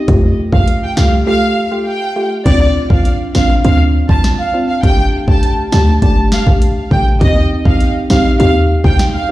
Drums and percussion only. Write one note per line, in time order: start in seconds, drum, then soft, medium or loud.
0.08 kick loud
0.08 closed hi-hat medium
0.53 kick medium
0.68 closed hi-hat medium
0.97 snare loud
2.46 kick loud
2.46 closed hi-hat medium
2.46 crash loud
2.90 kick medium
3.05 closed hi-hat medium
3.35 snare loud
3.65 closed hi-hat medium
4.09 kick medium
4.24 snare loud
4.24 closed hi-hat medium
4.83 kick loud
4.83 closed hi-hat medium
5.28 kick medium
5.43 closed hi-hat medium
5.72 snare loud
6.02 kick loud
6.02 closed hi-hat medium
6.32 snare loud
6.47 kick medium
6.62 closed hi-hat medium
6.91 kick medium
7.21 kick loud
7.21 closed hi-hat medium
7.65 kick medium
7.80 closed hi-hat medium
8.10 snare loud
8.40 closed hi-hat medium
8.84 kick medium
8.99 snare loud
8.99 closed hi-hat medium